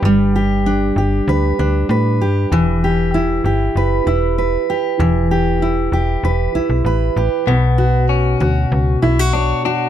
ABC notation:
X:1
M:4/4
L:1/16
Q:1/4=97
K:Bm
V:1 name="Steel-string acoustic guitar"
[G,DGB]2 G2 D2 G2 B2 D2 B2 G2 | E,2 G2 E2 G2 B2 E2 B2 G2 | E,2 G2 E2 G2 B2 E2 B2 G2 | B,,2 F4 F4 E F c2 F2 |]
V:2 name="Clean electric guitar"
z16 | z16 | z16 | B,4 C8 D2 D2 |]
V:3 name="FM bass" clef=bass
G,,,6 G,,,2 D,,2 D,,2 A,,2 G,,2 | E,,,6 G,,,2 F,,,2 E,,,4 z2 | E,,,6 E,,,2 E,,,2 B,,, B,,, A,,,2 A,,, z | B,,,6 D,,2 C,,2 B,,,4 z2 |]